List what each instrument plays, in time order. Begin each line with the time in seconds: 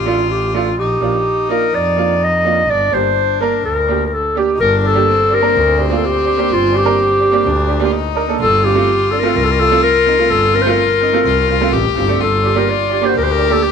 Already playing: double bass A1, violin F4
0.06 upright piano A3 D4 F4, clarinet F4
0.31 clarinet G4
0.54 upright piano A3 D4 F4, clarinet F4
0.78 double bass A#1, violin D#4, clarinet G4
1.00 double bass A#1, upright piano A#3 D4 F4
1.49 upright piano A#3 D4 F4, clarinet A#4
1.73 double bass F2, clarinet D5
1.96 upright piano A#3 D4 F4
2.24 clarinet D#5
2.45 upright piano A#3 D4 F4
2.69 double bass G1, violin D4, clarinet D5
2.91 double bass G1, upright piano A#3 D4 G4, clarinet C5
3.40 upright piano A#3 D4 A#4, clarinet A#4
3.64 double bass D2, clarinet A#4
3.88 upright piano A#3 D4 G4
4.06 clarinet A#4
4.13 clarinet A4
4.35 upright piano A#3 D4 G4, clarinet G4
4.53 violin D#4
4.59 double bass G1, violin D4, clarinet A#4
4.77 clarinet A#4
4.83 upright piano D4 G4, clarinet A4
4.94 upright piano A#3 D4 G4
5.08 violin C4
5.30 upright piano D4 G4
5.34 clarinet A#4
5.41 upright piano A#3 D4 A#4
5.55 double bass D2
5.77 upright piano D4 G4
5.90 upright piano A#3 D4 F4
5.96 clarinet A4
6.06 clarinet G4
6.25 upright piano D4 G4
6.37 upright piano A#3 D4 G4
6.50 double bass G1, clarinet F4
6.72 upright piano D4 G4
6.76 clarinet G4
6.84 upright piano A#3 D4 A#4
7.20 upright piano D4 G4
7.31 upright piano A#3 D4 G4
7.44 double bass D2, violin D4
7.67 upright piano D4 G4
7.80 upright piano A#3 D4 G4
7.85 violin F4
7.92 violin D#4
8.15 upright piano D4 A#4
8.28 upright piano A#3 D4 A4
8.39 double bass G1, violin F4, clarinet A4
8.64 upright piano C4 F4, clarinet G4
8.75 upright piano A3 C4 F4
9.11 upright piano C4 D4, clarinet A4
9.19 upright piano A3, clarinet A#4
9.24 upright piano C4 F4
9.28 clarinet A4
9.35 double bass C2, clarinet A#4
9.44 clarinet A4
9.51 clarinet A#4
9.59 upright piano C4 F4, clarinet A4
9.71 upright piano A3 C4 F4
9.83 clarinet A#4
10.06 upright piano C4 D#4
10.18 upright piano A3 C4 F4
10.30 double bass G1, clarinet A4
10.54 upright piano C4 F4, clarinet A#4
10.62 upright piano A3, clarinet C5
10.66 upright piano C4 F4, clarinet A#4
11.01 upright piano C4 D#4
11.13 upright piano A3 C4 F4
11.25 double bass C2, violin F4
11.49 upright piano C4 F4
11.61 upright piano A3 C4 F4
11.72 double bass A1, violin G4
11.95 double bass G1, upright piano C4 F4
12.08 upright piano A3 C4 D4
12.20 double bass G1, violin F4, clarinet A4
12.43 upright piano D4 G4
12.54 upright piano A#3 D4 G4, clarinet A#4
12.70 clarinet D5
12.89 upright piano D4 G4
13.01 upright piano A#3 D4 G4
13.06 violin F#4, clarinet C5
13.14 double bass D2, violin G4, clarinet A#4
13.23 clarinet C5
13.31 clarinet A#4
13.38 upright piano D4 G4
13.50 upright piano A#3 D4 G4, clarinet A4
13.63 clarinet G4